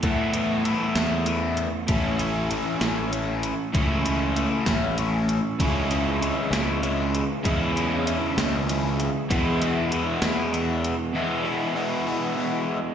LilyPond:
<<
  \new Staff \with { instrumentName = "Glass harmonica" } { \time 6/8 \key a \major \tempo 4. = 65 r2. | r2. | r2. | <cis' gis' b' e''>2.~ |
<cis' gis' b' e''>2. | <e' b' fis'' gis''>2.~ | <e' b' fis'' gis''>2. | }
  \new Staff \with { instrumentName = "Overdriven electric guitar" } { \time 6/8 \key a \major <e a b e'>8 <e a b e'>8 <e a b e'>8 <e a b e'>8 <e a b e'>8 r8 | <e a cis' e'>8 <e a cis' e'>8 <e a cis' e'>8 <e a cis' e'>8 <e a cis' e'>8 r8 | <e a cis' e'>8 <e a cis' e'>8 <e a cis' e'>8 <e a cis' e'>8 <e a cis' e'>8 r8 | <cis gis cis' e'>8 <cis gis cis' e'>8 <cis gis cis' e'>8 <cis gis cis' e'>8 <cis gis cis' e'>8 r8 |
<cis gis cis' e'>8 <cis gis cis' e'>8 <cis gis cis' e'>8 <cis gis cis' e'>8 <cis gis cis' e'>8 r8 | <e gis b e'>8 <e gis b e'>8 <e gis b e'>8 <e gis b e'>8 <e gis b e'>8 r8 | <e gis b e'>8 <e gis b e'>8 <e gis b e'>8 <e gis b e'>8 <e gis b e'>8 r8 | }
  \new Staff \with { instrumentName = "Overdriven electric guitar" } { \clef bass \time 6/8 \key a \major <e a b e'>2. | <a, e a cis' e'>2. | <a, e a cis' e'>2. | <cis e gis cis' e'>2. |
<cis e gis cis' e'>2. | <e, b, e gis b e'>2. | <e, b, e gis b e'>2. | }
  \new Staff \with { instrumentName = "Fingered electric bass" } { \clef bass \time 6/8 \key a \major a,4. e,4. | a,,4. a,,4. | cis,4. a,,4. | cis,4. cis,4. |
e,4. cis,4. | e,4. e,4. | r2. | }
  \new DrumStaff \with { instrumentName = "Drums" } \drummode { \time 6/8 <hh bd>8 hh8 hh8 <hh sn>8 hh8 hh8 | <hh bd>8 hh8 hh8 <hh sn>8 hh8 hh8 | <hh bd>8 hh8 hh8 <hh bd sn>8 hh8 hh8 | <hh bd>8 hh8 hh8 <hh sn>8 hh8 hh8 |
<hh bd>8 hh8 hh8 <hh sn>8 hh8 hh8 | <hh bd>8 hh8 hh8 <hh sn>8 hh8 hh8 | r4. r4. | }
>>